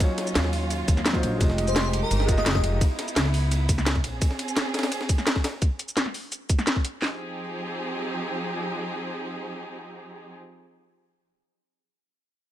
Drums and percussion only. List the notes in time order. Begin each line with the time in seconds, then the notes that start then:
0.00 kick, closed hi-hat, ride, cabasa
0.18 snare, closed hi-hat, ride
0.27 ride, cabasa
0.35 snare, closed hi-hat, ride, cabasa
0.45 snare
0.53 open hi-hat, ride
0.70 closed hi-hat, ride, cabasa
0.88 kick, closed hi-hat, ride, cabasa
0.97 snare, cabasa
1.06 snare, closed hi-hat, ride, cabasa
1.15 kick, ride
1.23 closed hi-hat, ride
1.41 kick, closed hi-hat, ride, cabasa
1.50 snare
1.58 closed hi-hat, ride
1.67 ride, cabasa
1.76 snare, closed hi-hat, ride, cabasa
1.93 closed hi-hat, ride
2.11 closed hi-hat, ride, cabasa
2.20 snare
2.29 kick, closed hi-hat, ride, cabasa
2.38 snare, cabasa
2.46 snare, closed hi-hat, ride, cabasa
2.55 kick, snare
2.64 closed hi-hat, ride
2.81 kick, closed hi-hat, ride, cabasa
2.99 snare, closed hi-hat, ride
3.08 ride, cabasa
3.16 snare, closed hi-hat, ride, cabasa
3.26 snare
3.34 open hi-hat, ride
3.51 closed hi-hat, ride, cabasa
3.69 kick, closed hi-hat, ride, cabasa
3.78 snare, cabasa
3.86 snare, closed hi-hat, ride, cabasa
3.96 kick, ride
4.04 closed hi-hat, ride
4.22 kick, closed hi-hat, ride, cabasa
4.31 snare
4.39 closed hi-hat, ride
4.48 ride, cabasa
4.56 snare, closed hi-hat, ride, cabasa
4.74 snare, closed hi-hat, ride
4.79 snare, ride
4.83 snare, ride
4.92 closed hi-hat, ride, cabasa
5.01 snare
5.09 kick, closed hi-hat, ride, cabasa
5.18 snare, cabasa
5.27 snare, closed hi-hat, ride, cabasa
5.36 kick, snare
5.44 snare, closed hi-hat, ride
5.62 kick, closed hi-hat, cabasa
5.79 closed hi-hat, cabasa
5.88 cabasa
5.97 snare, closed hi-hat, cabasa
6.06 snare
6.14 open hi-hat, cabasa
6.32 closed hi-hat, cabasa
6.49 kick, closed hi-hat, cabasa
6.59 snare, cabasa
6.67 snare, closed hi-hat, cabasa
6.76 kick
6.85 closed hi-hat, cabasa
7.02 snare, clap